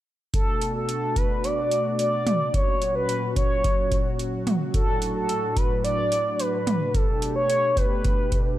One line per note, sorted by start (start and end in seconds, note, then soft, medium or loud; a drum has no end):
0.34 2.52 B2 medium
0.34 2.52 A3 medium
0.34 2.52 D4 medium
0.34 2.52 F#4 medium
0.34 0.72 A4 loud
0.34 kick loud
0.34 closed hi-hat medium
0.62 closed hi-hat medium
0.76 1.18 A4 medium
0.89 closed hi-hat medium
1.16 1.46 B4 loud
1.16 kick medium
1.16 closed hi-hat medium
1.44 1.99 D5 loud
1.44 closed hi-hat medium
1.72 closed hi-hat medium
1.99 2.56 D5 loud
1.99 closed hi-hat medium
2.27 closed hi-hat medium
2.27 mid tom medium
2.54 4.72 A#2 medium
2.54 6.91 F#3 medium
2.54 4.72 C#4 medium
2.54 6.91 F#4 medium
2.54 2.95 C#5 loud
2.54 kick loud
2.54 closed hi-hat medium
2.82 closed hi-hat medium
2.95 3.34 B4 loud
3.09 closed hi-hat medium
3.36 4.43 C#5 loud
3.36 kick medium
3.36 closed hi-hat medium
3.64 kick medium
3.64 closed hi-hat medium
3.92 kick medium
3.92 closed hi-hat medium
4.19 closed hi-hat medium
4.47 closed hi-hat medium
4.47 mid tom medium
4.74 6.92 A2 medium
4.74 8.59 D4 medium
4.74 5.13 A4 loud
4.74 kick loud
4.74 closed hi-hat medium
5.02 closed hi-hat medium
5.15 5.58 A4 loud
5.29 closed hi-hat medium
5.57 5.84 B4 loud
5.57 kick medium
5.57 closed hi-hat medium
5.84 6.41 D5 loud
5.84 closed hi-hat medium
6.12 closed hi-hat medium
6.40 6.96 B4 loud
6.40 closed hi-hat medium
6.67 closed hi-hat medium
6.67 mid tom medium
6.94 8.59 B2 medium
6.94 8.59 A3 medium
6.94 8.59 G4 medium
6.94 7.35 A4 loud
6.94 kick loud
6.94 closed hi-hat medium
7.22 closed hi-hat medium
7.36 7.79 C#5 loud
7.50 closed hi-hat medium
7.77 8.59 B4 loud
7.77 kick medium
7.77 closed hi-hat medium
8.05 kick medium
8.05 closed hi-hat medium
8.32 kick medium
8.32 closed hi-hat medium